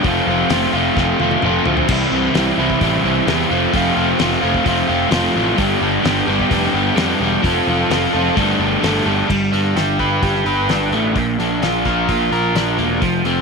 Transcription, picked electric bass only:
0, 0, Header, 1, 2, 480
1, 0, Start_track
1, 0, Tempo, 463679
1, 42, Time_signature, 4, 2, 24, 8
1, 13887, End_track
2, 0, Start_track
2, 0, Title_t, "Picked electric bass"
2, 0, Program_c, 0, 34
2, 45, Note_on_c, 0, 29, 103
2, 204, Note_off_c, 0, 29, 0
2, 283, Note_on_c, 0, 29, 99
2, 442, Note_off_c, 0, 29, 0
2, 519, Note_on_c, 0, 29, 89
2, 680, Note_off_c, 0, 29, 0
2, 759, Note_on_c, 0, 29, 88
2, 919, Note_off_c, 0, 29, 0
2, 999, Note_on_c, 0, 29, 94
2, 1159, Note_off_c, 0, 29, 0
2, 1242, Note_on_c, 0, 29, 84
2, 1401, Note_off_c, 0, 29, 0
2, 1476, Note_on_c, 0, 29, 93
2, 1636, Note_off_c, 0, 29, 0
2, 1715, Note_on_c, 0, 38, 93
2, 1875, Note_off_c, 0, 38, 0
2, 1956, Note_on_c, 0, 36, 96
2, 2116, Note_off_c, 0, 36, 0
2, 2195, Note_on_c, 0, 36, 89
2, 2355, Note_off_c, 0, 36, 0
2, 2436, Note_on_c, 0, 36, 88
2, 2595, Note_off_c, 0, 36, 0
2, 2669, Note_on_c, 0, 36, 90
2, 2830, Note_off_c, 0, 36, 0
2, 2911, Note_on_c, 0, 33, 93
2, 3072, Note_off_c, 0, 33, 0
2, 3146, Note_on_c, 0, 36, 88
2, 3308, Note_off_c, 0, 36, 0
2, 3388, Note_on_c, 0, 40, 95
2, 3549, Note_off_c, 0, 40, 0
2, 3630, Note_on_c, 0, 29, 92
2, 3790, Note_off_c, 0, 29, 0
2, 3871, Note_on_c, 0, 29, 102
2, 4030, Note_off_c, 0, 29, 0
2, 4109, Note_on_c, 0, 29, 93
2, 4269, Note_off_c, 0, 29, 0
2, 4347, Note_on_c, 0, 29, 85
2, 4508, Note_off_c, 0, 29, 0
2, 4586, Note_on_c, 0, 29, 90
2, 4746, Note_off_c, 0, 29, 0
2, 4824, Note_on_c, 0, 29, 93
2, 4985, Note_off_c, 0, 29, 0
2, 5064, Note_on_c, 0, 29, 93
2, 5225, Note_off_c, 0, 29, 0
2, 5299, Note_on_c, 0, 29, 92
2, 5462, Note_off_c, 0, 29, 0
2, 5548, Note_on_c, 0, 33, 93
2, 5707, Note_off_c, 0, 33, 0
2, 5785, Note_on_c, 0, 31, 103
2, 5945, Note_off_c, 0, 31, 0
2, 6018, Note_on_c, 0, 31, 97
2, 6180, Note_off_c, 0, 31, 0
2, 6265, Note_on_c, 0, 31, 88
2, 6425, Note_off_c, 0, 31, 0
2, 6497, Note_on_c, 0, 31, 94
2, 6659, Note_off_c, 0, 31, 0
2, 6740, Note_on_c, 0, 29, 97
2, 6901, Note_off_c, 0, 29, 0
2, 6975, Note_on_c, 0, 31, 93
2, 7137, Note_off_c, 0, 31, 0
2, 7213, Note_on_c, 0, 41, 96
2, 7376, Note_off_c, 0, 41, 0
2, 7456, Note_on_c, 0, 28, 94
2, 7618, Note_off_c, 0, 28, 0
2, 7699, Note_on_c, 0, 29, 104
2, 7860, Note_off_c, 0, 29, 0
2, 7945, Note_on_c, 0, 29, 103
2, 8104, Note_off_c, 0, 29, 0
2, 8179, Note_on_c, 0, 29, 94
2, 8340, Note_off_c, 0, 29, 0
2, 8431, Note_on_c, 0, 29, 93
2, 8588, Note_off_c, 0, 29, 0
2, 8663, Note_on_c, 0, 31, 97
2, 8822, Note_off_c, 0, 31, 0
2, 8897, Note_on_c, 0, 31, 94
2, 9059, Note_off_c, 0, 31, 0
2, 9148, Note_on_c, 0, 31, 96
2, 9306, Note_off_c, 0, 31, 0
2, 9379, Note_on_c, 0, 31, 93
2, 9540, Note_off_c, 0, 31, 0
2, 9624, Note_on_c, 0, 31, 90
2, 9846, Note_off_c, 0, 31, 0
2, 9866, Note_on_c, 0, 31, 84
2, 10087, Note_off_c, 0, 31, 0
2, 10105, Note_on_c, 0, 31, 73
2, 10328, Note_off_c, 0, 31, 0
2, 10348, Note_on_c, 0, 31, 83
2, 10570, Note_off_c, 0, 31, 0
2, 10584, Note_on_c, 0, 31, 82
2, 10808, Note_off_c, 0, 31, 0
2, 10814, Note_on_c, 0, 31, 78
2, 11043, Note_off_c, 0, 31, 0
2, 11066, Note_on_c, 0, 31, 82
2, 11290, Note_off_c, 0, 31, 0
2, 11300, Note_on_c, 0, 33, 77
2, 11527, Note_off_c, 0, 33, 0
2, 11547, Note_on_c, 0, 34, 93
2, 11772, Note_off_c, 0, 34, 0
2, 11789, Note_on_c, 0, 34, 88
2, 12013, Note_off_c, 0, 34, 0
2, 12039, Note_on_c, 0, 34, 78
2, 12259, Note_off_c, 0, 34, 0
2, 12268, Note_on_c, 0, 34, 85
2, 12494, Note_off_c, 0, 34, 0
2, 12514, Note_on_c, 0, 34, 83
2, 12738, Note_off_c, 0, 34, 0
2, 12751, Note_on_c, 0, 34, 84
2, 12977, Note_off_c, 0, 34, 0
2, 12993, Note_on_c, 0, 34, 87
2, 13219, Note_off_c, 0, 34, 0
2, 13235, Note_on_c, 0, 28, 85
2, 13460, Note_off_c, 0, 28, 0
2, 13477, Note_on_c, 0, 29, 95
2, 13702, Note_off_c, 0, 29, 0
2, 13716, Note_on_c, 0, 29, 86
2, 13887, Note_off_c, 0, 29, 0
2, 13887, End_track
0, 0, End_of_file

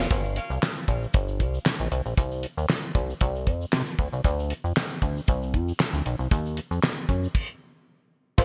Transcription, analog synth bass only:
0, 0, Header, 1, 2, 480
1, 0, Start_track
1, 0, Key_signature, -2, "minor"
1, 0, Tempo, 517241
1, 99, Time_signature, 4, 2, 24, 8
1, 7838, End_track
2, 0, Start_track
2, 0, Title_t, "Analog synth bass"
2, 0, Program_c, 0, 38
2, 99, Note_on_c, 0, 31, 115
2, 366, Note_off_c, 0, 31, 0
2, 466, Note_on_c, 0, 36, 81
2, 548, Note_off_c, 0, 36, 0
2, 817, Note_on_c, 0, 34, 82
2, 993, Note_off_c, 0, 34, 0
2, 1061, Note_on_c, 0, 31, 93
2, 1300, Note_on_c, 0, 36, 94
2, 1314, Note_off_c, 0, 31, 0
2, 1475, Note_off_c, 0, 36, 0
2, 1669, Note_on_c, 0, 34, 82
2, 1750, Note_off_c, 0, 34, 0
2, 1779, Note_on_c, 0, 36, 86
2, 1872, Note_off_c, 0, 36, 0
2, 1908, Note_on_c, 0, 34, 77
2, 1989, Note_off_c, 0, 34, 0
2, 2019, Note_on_c, 0, 36, 99
2, 2286, Note_off_c, 0, 36, 0
2, 2389, Note_on_c, 0, 39, 86
2, 2470, Note_off_c, 0, 39, 0
2, 2738, Note_on_c, 0, 36, 76
2, 2913, Note_off_c, 0, 36, 0
2, 2982, Note_on_c, 0, 36, 102
2, 3220, Note_on_c, 0, 41, 93
2, 3234, Note_off_c, 0, 36, 0
2, 3394, Note_off_c, 0, 41, 0
2, 3460, Note_on_c, 0, 48, 98
2, 3552, Note_off_c, 0, 48, 0
2, 3700, Note_on_c, 0, 38, 92
2, 3792, Note_off_c, 0, 38, 0
2, 3829, Note_on_c, 0, 36, 86
2, 3910, Note_off_c, 0, 36, 0
2, 3940, Note_on_c, 0, 38, 107
2, 4207, Note_off_c, 0, 38, 0
2, 4308, Note_on_c, 0, 41, 74
2, 4389, Note_off_c, 0, 41, 0
2, 4660, Note_on_c, 0, 38, 83
2, 4834, Note_off_c, 0, 38, 0
2, 4903, Note_on_c, 0, 36, 97
2, 5142, Note_on_c, 0, 41, 91
2, 5156, Note_off_c, 0, 36, 0
2, 5316, Note_off_c, 0, 41, 0
2, 5507, Note_on_c, 0, 38, 79
2, 5589, Note_off_c, 0, 38, 0
2, 5620, Note_on_c, 0, 35, 91
2, 5712, Note_off_c, 0, 35, 0
2, 5747, Note_on_c, 0, 36, 84
2, 5829, Note_off_c, 0, 36, 0
2, 5860, Note_on_c, 0, 39, 110
2, 6127, Note_off_c, 0, 39, 0
2, 6227, Note_on_c, 0, 41, 90
2, 6309, Note_off_c, 0, 41, 0
2, 6579, Note_on_c, 0, 42, 78
2, 6754, Note_off_c, 0, 42, 0
2, 7778, Note_on_c, 0, 31, 124
2, 7838, Note_off_c, 0, 31, 0
2, 7838, End_track
0, 0, End_of_file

